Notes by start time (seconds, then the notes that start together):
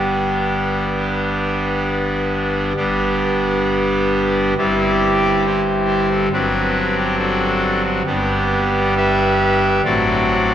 Already playing: G1 G2 G3 B3 D4 G4
2.76 G1 G2 G3 B3 D4 G4
4.58 G1 G2 G3 C4 E4 G4 D5
5.46 E4 G4 C5
6.11 A4
6.32 G1 G2 F#3 C4 D4 B4
6.98 G4
7.18 D4 F#4 A4
7.84 F#4
8.06 G1 G2 G3 B3 D4 G4
8.96 G4 B4 E5
9.84 A1 A2 F#3 C4 D4 F#4 A4 D5